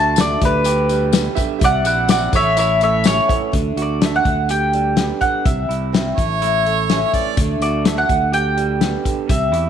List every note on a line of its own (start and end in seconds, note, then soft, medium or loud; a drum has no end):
0.00 0.35 D2 medium
0.00 0.41 D3 medium
0.00 0.17 A3 soft
0.00 0.17 D4 soft
0.00 0.17 F#4 soft
0.00 0.41 F#4 medium
0.00 0.41 A4 medium
0.00 0.41 D5 medium
0.00 0.18 A5 loud
0.16 0.41 A3 medium
0.16 0.42 D4 medium
0.16 0.41 F#4 loud
0.16 snare loud
0.16 closed hi-hat medium
0.16 tambourine loud
0.21 0.42 D5 medium
0.41 1.27 D2 loud
0.41 1.37 D3 medium
0.41 0.65 G3 soft
0.41 0.66 B3 medium
0.41 0.65 G4 medium
0.41 1.31 G4 medium
0.41 1.31 B4 medium
0.41 1.36 B4 medium
0.41 1.31 D5 medium
0.41 kick loud
0.41 closed hi-hat medium
0.64 0.90 G3 medium
0.64 closed hi-hat loud
0.64 tambourine medium
0.68 0.88 G4 medium
0.89 1.62 G3 medium
0.89 1.13 B3 soft
0.89 1.13 G4 medium
0.89 closed hi-hat medium
0.89 tambourine soft
1.12 1.37 D3 medium
1.12 1.37 G3 medium
1.12 1.37 B3 medium
1.12 1.35 G4 loud
1.12 snare loud
1.12 closed hi-hat medium
1.12 tambourine medium
1.35 1.62 D3 medium
1.35 1.61 B3 soft
1.35 1.58 G4 medium
1.35 1.61 G4 medium
1.35 1.59 B4 medium
1.35 1.57 E5 loud
1.35 kick medium
1.35 closed hi-hat medium
1.35 tambourine medium
1.40 1.59 G3 soft
1.58 1.85 C2 loud
1.58 1.84 C3 medium
1.58 1.84 E3 loud
1.58 1.84 G3 medium
1.58 1.85 C4 medium
1.58 1.83 E4 medium
1.58 2.32 G4 medium
1.58 2.32 C5 medium
1.58 2.32 E5 medium
1.58 kick loud
1.58 closed hi-hat medium
1.58 tambourine soft
1.64 1.84 D5 medium
1.64 1.85 F#5 loud
1.84 2.28 A#1 medium
1.84 2.08 C4 soft
1.84 2.08 E4 soft
1.84 2.08 D5 medium
1.84 2.09 F#5 medium
1.84 closed hi-hat medium
1.84 tambourine medium
2.08 2.32 C3 medium
2.08 2.32 E3 medium
2.08 2.33 G3 loud
2.08 2.33 C4 medium
2.08 2.31 E4 medium
2.08 2.32 D5 medium
2.08 2.33 F#5 medium
2.08 snare loud
2.08 closed hi-hat loud
2.08 tambourine medium
2.32 3.19 A1 loud
2.32 3.53 A2 medium
2.32 2.55 A3 soft
2.32 2.56 C#4 soft
2.32 2.57 E4 medium
2.32 3.22 A4 medium
2.32 3.23 C#5 medium
2.32 2.56 C#5 medium
2.32 3.23 E5 medium
2.32 2.58 E5 loud
2.32 kick loud
2.32 closed hi-hat medium
2.32 tambourine medium
2.55 2.80 E3 medium
2.55 2.80 A3 medium
2.55 2.80 C#4 medium
2.55 closed hi-hat medium
2.55 tambourine medium
2.59 2.78 E4 medium
2.59 2.80 C#5 medium
2.59 2.82 E5 medium
2.79 3.54 A3 medium
2.79 3.05 C#4 soft
2.79 3.04 E4 medium
2.79 3.04 C#5 medium
2.79 closed hi-hat medium
2.79 tambourine soft
2.84 3.06 E5 medium
3.04 3.28 A2 medium
3.04 3.29 E3 medium
3.04 3.29 A3 medium
3.04 3.28 C#4 medium
3.04 3.25 E4 medium
3.04 3.52 C#5 loud
3.04 snare loud
3.04 closed hi-hat medium
3.04 tambourine loud
3.27 3.53 E3 medium
3.27 3.53 C#4 medium
3.27 3.52 E4 medium
3.27 3.51 A4 medium
3.27 3.51 C#5 medium
3.27 3.51 F#5 medium
3.27 kick medium
3.27 closed hi-hat medium
3.31 3.51 A3 soft
3.52 3.75 D2 medium
3.52 3.76 D3 medium
3.52 3.77 A3 medium
3.52 3.77 D4 medium
3.52 3.76 F#4 medium
3.52 kick loud
3.52 closed hi-hat medium
3.76 4.19 D2 medium
3.76 4.01 A3 soft
3.76 4.02 D4 soft
3.76 4.01 F#4 soft
3.76 closed hi-hat medium
3.82 4.04 D5 medium
4.01 4.25 D3 medium
4.01 4.26 A3 medium
4.01 4.26 D4 medium
4.01 4.25 F#4 medium
4.01 4.15 E5 medium
4.01 snare loud
4.01 closed hi-hat medium
4.16 4.50 F#5 medium
4.25 5.11 D2 medium
4.25 5.21 D3 medium
4.25 4.48 G3 soft
4.25 4.50 B3 soft
4.25 4.49 G4 soft
4.25 kick medium
4.25 closed hi-hat medium
4.49 5.45 G4 medium
4.49 5.20 G5 medium
4.49 closed hi-hat medium
4.72 4.96 G3 soft
4.72 4.97 G4 soft
4.72 closed hi-hat soft
4.97 5.46 B3 medium
4.97 snare loud
4.97 closed hi-hat medium
5.21 5.45 D3 medium
5.21 5.46 B3 soft
5.21 5.46 F#5 medium
5.21 kick medium
5.21 closed hi-hat medium
5.25 5.45 G3 soft
5.45 5.67 C2 loud
5.45 5.69 C3 medium
5.45 5.69 E3 medium
5.45 5.70 G3 medium
5.45 5.69 C4 medium
5.45 5.67 E4 medium
5.45 6.37 E5 medium
5.45 kick loud
5.45 closed hi-hat medium
5.69 6.12 C2 medium
5.69 5.92 G3 soft
5.69 5.93 C4 soft
5.69 5.93 E4 soft
5.69 closed hi-hat medium
5.92 6.17 C3 medium
5.92 6.17 E3 medium
5.92 6.17 G3 medium
5.92 6.18 C4 medium
5.92 6.16 E4 medium
5.92 snare loud
5.92 closed hi-hat medium
6.16 7.03 A1 medium
6.16 7.37 A2 medium
6.16 6.41 C#4 soft
6.16 6.41 E4 medium
6.16 7.10 C#5 loud
6.16 kick loud
6.16 closed hi-hat medium
6.20 6.40 A3 soft
6.40 6.65 E3 medium
6.40 6.65 A3 medium
6.40 6.66 C#4 medium
6.40 6.64 E4 medium
6.40 closed hi-hat medium
6.65 7.37 A3 medium
6.65 6.89 C#4 soft
6.65 6.89 E4 soft
6.65 closed hi-hat soft
6.88 7.13 A2 medium
6.88 7.13 E3 medium
6.88 7.13 A3 medium
6.88 7.13 C#4 medium
6.88 7.12 E4 medium
6.88 snare medium
6.88 closed hi-hat medium
7.14 7.38 E3 medium
7.14 7.37 A3 soft
7.14 7.38 C#4 soft
7.14 7.37 E4 medium
7.14 7.37 D5 medium
7.14 kick medium
7.14 closed hi-hat medium
7.37 7.59 D2 loud
7.37 7.61 D3 medium
7.37 7.61 A3 medium
7.37 7.62 D4 medium
7.37 7.60 F#4 medium
7.37 kick loud
7.37 closed hi-hat medium
7.60 8.03 D2 medium
7.60 7.86 D4 soft
7.60 7.85 F#4 soft
7.60 7.86 D5 medium
7.60 closed hi-hat medium
7.64 7.85 A3 soft
7.85 8.10 A3 medium
7.85 8.10 D4 medium
7.85 8.09 F#4 medium
7.85 7.98 E5 medium
7.85 snare loud
7.85 closed hi-hat medium
7.98 8.33 F#5 medium
8.09 8.95 D2 medium
8.09 9.03 D3 medium
8.09 8.34 G3 soft
8.09 8.34 B3 soft
8.09 8.33 G4 soft
8.09 kick loud
8.09 closed hi-hat medium
8.32 8.58 G3 medium
8.32 9.29 G4 medium
8.32 9.32 G5 loud
8.32 closed hi-hat medium
8.57 9.29 G3 medium
8.57 8.82 B3 soft
8.57 8.82 G4 soft
8.57 closed hi-hat medium
8.81 9.05 D3 medium
8.81 9.06 G3 medium
8.81 9.29 B3 medium
8.81 9.04 G4 medium
8.81 snare loud
8.81 closed hi-hat medium
9.05 9.29 D3 medium
9.05 9.29 G3 soft
9.05 9.30 B3 soft
9.05 9.29 G4 medium
9.05 kick medium
9.05 closed hi-hat medium
9.29 9.52 C2 loud
9.29 9.53 C3 medium
9.29 9.53 E3 medium
9.29 9.53 G3 medium
9.29 9.52 C4 medium
9.29 9.51 E4 medium
9.29 9.70 E5 medium
9.29 kick loud
9.29 closed hi-hat medium
9.52 9.70 E2 medium
9.52 9.70 G3 soft
9.52 9.70 C4 soft
9.52 9.70 E4 soft
9.52 closed hi-hat medium